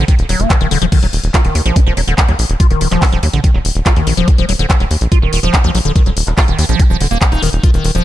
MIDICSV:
0, 0, Header, 1, 4, 480
1, 0, Start_track
1, 0, Key_signature, -6, "minor"
1, 0, Tempo, 419580
1, 1054, Time_signature, 4, 2, 24, 8
1, 9200, End_track
2, 0, Start_track
2, 0, Title_t, "Acid bass"
2, 0, Program_c, 0, 38
2, 94, Note_on_c, 0, 51, 86
2, 175, Note_off_c, 0, 51, 0
2, 334, Note_on_c, 0, 54, 78
2, 454, Note_on_c, 0, 58, 82
2, 471, Note_off_c, 0, 54, 0
2, 568, Note_off_c, 0, 58, 0
2, 574, Note_on_c, 0, 51, 85
2, 655, Note_off_c, 0, 51, 0
2, 694, Note_on_c, 0, 51, 102
2, 775, Note_off_c, 0, 51, 0
2, 814, Note_on_c, 0, 50, 102
2, 895, Note_off_c, 0, 50, 0
2, 934, Note_on_c, 0, 53, 98
2, 983, Note_off_c, 0, 53, 0
2, 1054, Note_on_c, 0, 51, 86
2, 1136, Note_off_c, 0, 51, 0
2, 1174, Note_on_c, 0, 54, 80
2, 1223, Note_off_c, 0, 54, 0
2, 1534, Note_on_c, 0, 65, 84
2, 1615, Note_off_c, 0, 65, 0
2, 1654, Note_on_c, 0, 51, 77
2, 1768, Note_off_c, 0, 51, 0
2, 1774, Note_on_c, 0, 51, 80
2, 1855, Note_off_c, 0, 51, 0
2, 1894, Note_on_c, 0, 53, 103
2, 2014, Note_on_c, 0, 65, 86
2, 2031, Note_off_c, 0, 53, 0
2, 2063, Note_off_c, 0, 65, 0
2, 2134, Note_on_c, 0, 53, 107
2, 2215, Note_off_c, 0, 53, 0
2, 2254, Note_on_c, 0, 54, 77
2, 2303, Note_off_c, 0, 54, 0
2, 2374, Note_on_c, 0, 50, 105
2, 2455, Note_off_c, 0, 50, 0
2, 2494, Note_on_c, 0, 51, 85
2, 2575, Note_off_c, 0, 51, 0
2, 2614, Note_on_c, 0, 54, 77
2, 2663, Note_off_c, 0, 54, 0
2, 2975, Note_on_c, 0, 65, 86
2, 3056, Note_off_c, 0, 65, 0
2, 3094, Note_on_c, 0, 51, 78
2, 3208, Note_off_c, 0, 51, 0
2, 3214, Note_on_c, 0, 51, 79
2, 3296, Note_off_c, 0, 51, 0
2, 3334, Note_on_c, 0, 53, 101
2, 3454, Note_on_c, 0, 65, 87
2, 3471, Note_off_c, 0, 53, 0
2, 3503, Note_off_c, 0, 65, 0
2, 3574, Note_on_c, 0, 53, 104
2, 3655, Note_off_c, 0, 53, 0
2, 3694, Note_on_c, 0, 54, 77
2, 3743, Note_off_c, 0, 54, 0
2, 3814, Note_on_c, 0, 50, 103
2, 3895, Note_off_c, 0, 50, 0
2, 3934, Note_on_c, 0, 51, 83
2, 4015, Note_off_c, 0, 51, 0
2, 4054, Note_on_c, 0, 54, 80
2, 4103, Note_off_c, 0, 54, 0
2, 4414, Note_on_c, 0, 65, 83
2, 4495, Note_off_c, 0, 65, 0
2, 4534, Note_on_c, 0, 51, 78
2, 4648, Note_off_c, 0, 51, 0
2, 4654, Note_on_c, 0, 51, 78
2, 4735, Note_off_c, 0, 51, 0
2, 4774, Note_on_c, 0, 53, 101
2, 4894, Note_on_c, 0, 65, 84
2, 4911, Note_off_c, 0, 53, 0
2, 4943, Note_off_c, 0, 65, 0
2, 5014, Note_on_c, 0, 53, 106
2, 5095, Note_off_c, 0, 53, 0
2, 5134, Note_on_c, 0, 54, 75
2, 5183, Note_off_c, 0, 54, 0
2, 5254, Note_on_c, 0, 50, 101
2, 5335, Note_off_c, 0, 50, 0
2, 5374, Note_on_c, 0, 51, 84
2, 5455, Note_off_c, 0, 51, 0
2, 5494, Note_on_c, 0, 54, 80
2, 5543, Note_off_c, 0, 54, 0
2, 5854, Note_on_c, 0, 65, 88
2, 5935, Note_off_c, 0, 65, 0
2, 5974, Note_on_c, 0, 51, 80
2, 6088, Note_off_c, 0, 51, 0
2, 6094, Note_on_c, 0, 51, 77
2, 6175, Note_off_c, 0, 51, 0
2, 6214, Note_on_c, 0, 53, 103
2, 6334, Note_on_c, 0, 65, 86
2, 6351, Note_off_c, 0, 53, 0
2, 6383, Note_off_c, 0, 65, 0
2, 6454, Note_on_c, 0, 53, 105
2, 6535, Note_off_c, 0, 53, 0
2, 6574, Note_on_c, 0, 54, 77
2, 6623, Note_off_c, 0, 54, 0
2, 6694, Note_on_c, 0, 50, 101
2, 6775, Note_off_c, 0, 50, 0
2, 6814, Note_on_c, 0, 51, 87
2, 6895, Note_off_c, 0, 51, 0
2, 6934, Note_on_c, 0, 54, 77
2, 6983, Note_off_c, 0, 54, 0
2, 7294, Note_on_c, 0, 65, 85
2, 7375, Note_off_c, 0, 65, 0
2, 7415, Note_on_c, 0, 51, 80
2, 7528, Note_off_c, 0, 51, 0
2, 7534, Note_on_c, 0, 51, 79
2, 7615, Note_off_c, 0, 51, 0
2, 7654, Note_on_c, 0, 53, 102
2, 7774, Note_on_c, 0, 65, 86
2, 7791, Note_off_c, 0, 53, 0
2, 7823, Note_off_c, 0, 65, 0
2, 7894, Note_on_c, 0, 53, 107
2, 7975, Note_off_c, 0, 53, 0
2, 8014, Note_on_c, 0, 50, 78
2, 8095, Note_off_c, 0, 50, 0
2, 8134, Note_on_c, 0, 58, 106
2, 8215, Note_off_c, 0, 58, 0
2, 8254, Note_on_c, 0, 53, 85
2, 8303, Note_off_c, 0, 53, 0
2, 8374, Note_on_c, 0, 63, 104
2, 8488, Note_off_c, 0, 63, 0
2, 8494, Note_on_c, 0, 51, 105
2, 8575, Note_off_c, 0, 51, 0
2, 8734, Note_on_c, 0, 65, 87
2, 8815, Note_off_c, 0, 65, 0
2, 8854, Note_on_c, 0, 51, 81
2, 8968, Note_off_c, 0, 51, 0
2, 8974, Note_on_c, 0, 51, 75
2, 9055, Note_off_c, 0, 51, 0
2, 9094, Note_on_c, 0, 53, 103
2, 9200, Note_off_c, 0, 53, 0
2, 9200, End_track
3, 0, Start_track
3, 0, Title_t, "Analog synth bass"
3, 0, Program_c, 1, 38
3, 214, Note_on_c, 1, 27, 89
3, 285, Note_off_c, 1, 27, 0
3, 334, Note_on_c, 1, 27, 105
3, 405, Note_off_c, 1, 27, 0
3, 454, Note_on_c, 1, 27, 94
3, 525, Note_off_c, 1, 27, 0
3, 694, Note_on_c, 1, 27, 86
3, 766, Note_off_c, 1, 27, 0
3, 814, Note_on_c, 1, 27, 101
3, 885, Note_off_c, 1, 27, 0
3, 934, Note_on_c, 1, 27, 91
3, 1005, Note_off_c, 1, 27, 0
3, 1174, Note_on_c, 1, 27, 88
3, 1245, Note_off_c, 1, 27, 0
3, 1294, Note_on_c, 1, 27, 99
3, 1365, Note_off_c, 1, 27, 0
3, 1414, Note_on_c, 1, 27, 91
3, 1486, Note_off_c, 1, 27, 0
3, 1654, Note_on_c, 1, 27, 90
3, 1725, Note_off_c, 1, 27, 0
3, 1774, Note_on_c, 1, 39, 103
3, 1845, Note_off_c, 1, 39, 0
3, 1894, Note_on_c, 1, 34, 93
3, 1965, Note_off_c, 1, 34, 0
3, 2134, Note_on_c, 1, 27, 91
3, 2206, Note_off_c, 1, 27, 0
3, 2254, Note_on_c, 1, 27, 101
3, 2326, Note_off_c, 1, 27, 0
3, 2374, Note_on_c, 1, 27, 96
3, 2446, Note_off_c, 1, 27, 0
3, 2614, Note_on_c, 1, 39, 86
3, 2686, Note_off_c, 1, 39, 0
3, 2735, Note_on_c, 1, 34, 101
3, 2806, Note_off_c, 1, 34, 0
3, 2855, Note_on_c, 1, 27, 89
3, 2926, Note_off_c, 1, 27, 0
3, 3094, Note_on_c, 1, 27, 88
3, 3165, Note_off_c, 1, 27, 0
3, 3214, Note_on_c, 1, 27, 99
3, 3286, Note_off_c, 1, 27, 0
3, 3334, Note_on_c, 1, 27, 92
3, 3406, Note_off_c, 1, 27, 0
3, 3574, Note_on_c, 1, 27, 86
3, 3646, Note_off_c, 1, 27, 0
3, 3695, Note_on_c, 1, 39, 102
3, 3766, Note_off_c, 1, 39, 0
3, 3815, Note_on_c, 1, 34, 94
3, 3886, Note_off_c, 1, 34, 0
3, 4054, Note_on_c, 1, 27, 90
3, 4125, Note_off_c, 1, 27, 0
3, 4174, Note_on_c, 1, 27, 99
3, 4245, Note_off_c, 1, 27, 0
3, 4294, Note_on_c, 1, 27, 94
3, 4366, Note_off_c, 1, 27, 0
3, 4534, Note_on_c, 1, 39, 88
3, 4605, Note_off_c, 1, 39, 0
3, 4654, Note_on_c, 1, 34, 99
3, 4725, Note_off_c, 1, 34, 0
3, 4774, Note_on_c, 1, 27, 91
3, 4845, Note_off_c, 1, 27, 0
3, 5014, Note_on_c, 1, 27, 89
3, 5085, Note_off_c, 1, 27, 0
3, 5134, Note_on_c, 1, 27, 101
3, 5205, Note_off_c, 1, 27, 0
3, 5254, Note_on_c, 1, 27, 90
3, 5325, Note_off_c, 1, 27, 0
3, 5494, Note_on_c, 1, 27, 86
3, 5565, Note_off_c, 1, 27, 0
3, 5614, Note_on_c, 1, 39, 105
3, 5685, Note_off_c, 1, 39, 0
3, 5734, Note_on_c, 1, 34, 93
3, 5805, Note_off_c, 1, 34, 0
3, 5974, Note_on_c, 1, 27, 91
3, 6045, Note_off_c, 1, 27, 0
3, 6094, Note_on_c, 1, 27, 102
3, 6166, Note_off_c, 1, 27, 0
3, 6214, Note_on_c, 1, 27, 97
3, 6286, Note_off_c, 1, 27, 0
3, 6454, Note_on_c, 1, 39, 86
3, 6525, Note_off_c, 1, 39, 0
3, 6574, Note_on_c, 1, 34, 100
3, 6645, Note_off_c, 1, 34, 0
3, 6694, Note_on_c, 1, 27, 94
3, 6766, Note_off_c, 1, 27, 0
3, 6934, Note_on_c, 1, 27, 87
3, 7006, Note_off_c, 1, 27, 0
3, 7054, Note_on_c, 1, 27, 102
3, 7125, Note_off_c, 1, 27, 0
3, 7174, Note_on_c, 1, 27, 90
3, 7245, Note_off_c, 1, 27, 0
3, 7414, Note_on_c, 1, 27, 88
3, 7485, Note_off_c, 1, 27, 0
3, 7534, Note_on_c, 1, 39, 105
3, 7605, Note_off_c, 1, 39, 0
3, 7655, Note_on_c, 1, 34, 94
3, 7726, Note_off_c, 1, 34, 0
3, 7894, Note_on_c, 1, 27, 89
3, 7965, Note_off_c, 1, 27, 0
3, 8014, Note_on_c, 1, 27, 102
3, 8085, Note_off_c, 1, 27, 0
3, 8134, Note_on_c, 1, 27, 92
3, 8205, Note_off_c, 1, 27, 0
3, 8374, Note_on_c, 1, 27, 88
3, 8445, Note_off_c, 1, 27, 0
3, 8494, Note_on_c, 1, 27, 98
3, 8565, Note_off_c, 1, 27, 0
3, 8614, Note_on_c, 1, 27, 91
3, 8685, Note_off_c, 1, 27, 0
3, 8854, Note_on_c, 1, 27, 86
3, 8925, Note_off_c, 1, 27, 0
3, 8973, Note_on_c, 1, 27, 101
3, 9045, Note_off_c, 1, 27, 0
3, 9094, Note_on_c, 1, 27, 92
3, 9165, Note_off_c, 1, 27, 0
3, 9200, End_track
4, 0, Start_track
4, 0, Title_t, "Drums"
4, 94, Note_on_c, 9, 36, 115
4, 94, Note_on_c, 9, 42, 84
4, 208, Note_off_c, 9, 36, 0
4, 209, Note_off_c, 9, 42, 0
4, 214, Note_on_c, 9, 42, 41
4, 329, Note_off_c, 9, 42, 0
4, 334, Note_on_c, 9, 46, 106
4, 448, Note_off_c, 9, 46, 0
4, 454, Note_on_c, 9, 42, 54
4, 569, Note_off_c, 9, 42, 0
4, 574, Note_on_c, 9, 36, 121
4, 574, Note_on_c, 9, 39, 126
4, 574, Note_on_c, 9, 42, 85
4, 689, Note_off_c, 9, 36, 0
4, 689, Note_off_c, 9, 39, 0
4, 689, Note_off_c, 9, 42, 0
4, 694, Note_on_c, 9, 42, 40
4, 809, Note_off_c, 9, 42, 0
4, 814, Note_on_c, 9, 46, 99
4, 929, Note_off_c, 9, 46, 0
4, 934, Note_on_c, 9, 42, 56
4, 1049, Note_off_c, 9, 42, 0
4, 1054, Note_on_c, 9, 36, 124
4, 1054, Note_on_c, 9, 42, 86
4, 1054, Note_on_c, 9, 49, 77
4, 1168, Note_off_c, 9, 36, 0
4, 1169, Note_off_c, 9, 42, 0
4, 1169, Note_off_c, 9, 49, 0
4, 1174, Note_on_c, 9, 42, 39
4, 1289, Note_off_c, 9, 42, 0
4, 1294, Note_on_c, 9, 46, 106
4, 1409, Note_off_c, 9, 46, 0
4, 1414, Note_on_c, 9, 42, 55
4, 1529, Note_off_c, 9, 42, 0
4, 1534, Note_on_c, 9, 36, 125
4, 1534, Note_on_c, 9, 39, 127
4, 1534, Note_on_c, 9, 42, 85
4, 1649, Note_off_c, 9, 36, 0
4, 1649, Note_off_c, 9, 39, 0
4, 1649, Note_off_c, 9, 42, 0
4, 1654, Note_on_c, 9, 42, 38
4, 1769, Note_off_c, 9, 42, 0
4, 1775, Note_on_c, 9, 46, 105
4, 1889, Note_off_c, 9, 46, 0
4, 1895, Note_on_c, 9, 42, 58
4, 2009, Note_off_c, 9, 42, 0
4, 2014, Note_on_c, 9, 36, 122
4, 2015, Note_on_c, 9, 42, 86
4, 2129, Note_off_c, 9, 36, 0
4, 2129, Note_off_c, 9, 42, 0
4, 2254, Note_on_c, 9, 46, 105
4, 2369, Note_off_c, 9, 46, 0
4, 2374, Note_on_c, 9, 42, 54
4, 2489, Note_off_c, 9, 42, 0
4, 2494, Note_on_c, 9, 36, 125
4, 2494, Note_on_c, 9, 39, 125
4, 2494, Note_on_c, 9, 42, 82
4, 2609, Note_off_c, 9, 36, 0
4, 2609, Note_off_c, 9, 39, 0
4, 2609, Note_off_c, 9, 42, 0
4, 2615, Note_on_c, 9, 42, 38
4, 2729, Note_off_c, 9, 42, 0
4, 2734, Note_on_c, 9, 46, 108
4, 2849, Note_off_c, 9, 46, 0
4, 2854, Note_on_c, 9, 42, 56
4, 2969, Note_off_c, 9, 42, 0
4, 2974, Note_on_c, 9, 36, 125
4, 2974, Note_on_c, 9, 42, 83
4, 3089, Note_off_c, 9, 36, 0
4, 3089, Note_off_c, 9, 42, 0
4, 3095, Note_on_c, 9, 42, 37
4, 3209, Note_off_c, 9, 42, 0
4, 3214, Note_on_c, 9, 46, 111
4, 3329, Note_off_c, 9, 46, 0
4, 3334, Note_on_c, 9, 39, 39
4, 3334, Note_on_c, 9, 42, 55
4, 3449, Note_off_c, 9, 39, 0
4, 3449, Note_off_c, 9, 42, 0
4, 3454, Note_on_c, 9, 36, 127
4, 3454, Note_on_c, 9, 39, 127
4, 3454, Note_on_c, 9, 46, 65
4, 3569, Note_off_c, 9, 36, 0
4, 3569, Note_off_c, 9, 39, 0
4, 3569, Note_off_c, 9, 46, 0
4, 3574, Note_on_c, 9, 42, 37
4, 3689, Note_off_c, 9, 42, 0
4, 3694, Note_on_c, 9, 46, 111
4, 3808, Note_off_c, 9, 46, 0
4, 3814, Note_on_c, 9, 42, 53
4, 3929, Note_off_c, 9, 42, 0
4, 3934, Note_on_c, 9, 36, 126
4, 3934, Note_on_c, 9, 42, 83
4, 4049, Note_off_c, 9, 36, 0
4, 4049, Note_off_c, 9, 42, 0
4, 4174, Note_on_c, 9, 46, 110
4, 4289, Note_off_c, 9, 46, 0
4, 4294, Note_on_c, 9, 42, 53
4, 4409, Note_off_c, 9, 42, 0
4, 4414, Note_on_c, 9, 36, 126
4, 4415, Note_on_c, 9, 39, 127
4, 4415, Note_on_c, 9, 42, 83
4, 4529, Note_off_c, 9, 36, 0
4, 4529, Note_off_c, 9, 39, 0
4, 4529, Note_off_c, 9, 42, 0
4, 4534, Note_on_c, 9, 42, 38
4, 4649, Note_off_c, 9, 42, 0
4, 4654, Note_on_c, 9, 46, 110
4, 4769, Note_off_c, 9, 46, 0
4, 4774, Note_on_c, 9, 42, 53
4, 4889, Note_off_c, 9, 42, 0
4, 4894, Note_on_c, 9, 36, 127
4, 4894, Note_on_c, 9, 42, 78
4, 5008, Note_off_c, 9, 36, 0
4, 5009, Note_off_c, 9, 42, 0
4, 5014, Note_on_c, 9, 42, 36
4, 5129, Note_off_c, 9, 42, 0
4, 5134, Note_on_c, 9, 46, 114
4, 5249, Note_off_c, 9, 46, 0
4, 5254, Note_on_c, 9, 42, 52
4, 5369, Note_off_c, 9, 42, 0
4, 5374, Note_on_c, 9, 36, 127
4, 5374, Note_on_c, 9, 39, 127
4, 5374, Note_on_c, 9, 42, 79
4, 5488, Note_off_c, 9, 36, 0
4, 5488, Note_off_c, 9, 39, 0
4, 5488, Note_off_c, 9, 42, 0
4, 5494, Note_on_c, 9, 42, 36
4, 5608, Note_off_c, 9, 42, 0
4, 5614, Note_on_c, 9, 46, 110
4, 5728, Note_off_c, 9, 46, 0
4, 5734, Note_on_c, 9, 42, 53
4, 5849, Note_off_c, 9, 42, 0
4, 5854, Note_on_c, 9, 36, 127
4, 5854, Note_on_c, 9, 42, 78
4, 5968, Note_off_c, 9, 36, 0
4, 5968, Note_off_c, 9, 42, 0
4, 6094, Note_on_c, 9, 46, 112
4, 6208, Note_off_c, 9, 46, 0
4, 6214, Note_on_c, 9, 42, 51
4, 6328, Note_off_c, 9, 42, 0
4, 6334, Note_on_c, 9, 36, 127
4, 6334, Note_on_c, 9, 39, 124
4, 6334, Note_on_c, 9, 42, 79
4, 6448, Note_off_c, 9, 36, 0
4, 6449, Note_off_c, 9, 39, 0
4, 6449, Note_off_c, 9, 42, 0
4, 6454, Note_on_c, 9, 42, 36
4, 6569, Note_off_c, 9, 42, 0
4, 6574, Note_on_c, 9, 46, 109
4, 6689, Note_off_c, 9, 46, 0
4, 6694, Note_on_c, 9, 42, 52
4, 6809, Note_off_c, 9, 42, 0
4, 6814, Note_on_c, 9, 36, 127
4, 6814, Note_on_c, 9, 42, 77
4, 6928, Note_off_c, 9, 36, 0
4, 6929, Note_off_c, 9, 42, 0
4, 6934, Note_on_c, 9, 42, 35
4, 7049, Note_off_c, 9, 42, 0
4, 7054, Note_on_c, 9, 46, 113
4, 7169, Note_off_c, 9, 46, 0
4, 7175, Note_on_c, 9, 39, 36
4, 7175, Note_on_c, 9, 42, 51
4, 7289, Note_off_c, 9, 39, 0
4, 7289, Note_off_c, 9, 42, 0
4, 7294, Note_on_c, 9, 36, 127
4, 7294, Note_on_c, 9, 39, 121
4, 7294, Note_on_c, 9, 46, 68
4, 7408, Note_off_c, 9, 36, 0
4, 7409, Note_off_c, 9, 39, 0
4, 7409, Note_off_c, 9, 46, 0
4, 7414, Note_on_c, 9, 42, 35
4, 7528, Note_off_c, 9, 42, 0
4, 7534, Note_on_c, 9, 46, 108
4, 7648, Note_off_c, 9, 46, 0
4, 7654, Note_on_c, 9, 42, 51
4, 7769, Note_off_c, 9, 42, 0
4, 7774, Note_on_c, 9, 36, 127
4, 7774, Note_on_c, 9, 42, 79
4, 7888, Note_off_c, 9, 36, 0
4, 7888, Note_off_c, 9, 42, 0
4, 8014, Note_on_c, 9, 46, 109
4, 8128, Note_off_c, 9, 46, 0
4, 8134, Note_on_c, 9, 42, 51
4, 8248, Note_off_c, 9, 42, 0
4, 8254, Note_on_c, 9, 36, 127
4, 8254, Note_on_c, 9, 39, 119
4, 8254, Note_on_c, 9, 42, 76
4, 8368, Note_off_c, 9, 36, 0
4, 8368, Note_off_c, 9, 39, 0
4, 8368, Note_off_c, 9, 42, 0
4, 8374, Note_on_c, 9, 42, 35
4, 8489, Note_off_c, 9, 42, 0
4, 8494, Note_on_c, 9, 46, 108
4, 8609, Note_off_c, 9, 46, 0
4, 8615, Note_on_c, 9, 42, 51
4, 8729, Note_off_c, 9, 42, 0
4, 8734, Note_on_c, 9, 36, 124
4, 8734, Note_on_c, 9, 42, 80
4, 8848, Note_off_c, 9, 36, 0
4, 8849, Note_off_c, 9, 42, 0
4, 8855, Note_on_c, 9, 42, 36
4, 8969, Note_off_c, 9, 42, 0
4, 8974, Note_on_c, 9, 46, 109
4, 9089, Note_off_c, 9, 46, 0
4, 9094, Note_on_c, 9, 42, 50
4, 9200, Note_off_c, 9, 42, 0
4, 9200, End_track
0, 0, End_of_file